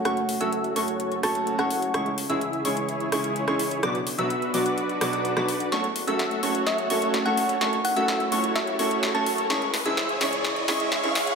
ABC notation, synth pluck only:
X:1
M:4/4
L:1/16
Q:1/4=127
K:F#m
V:1 name="Synth pluck"
f2 z8 a2 z f3 | z16 | z16 | z8 e2 z3 f2 z |
z2 f2 z4 e2 z3 a3 | z16 |]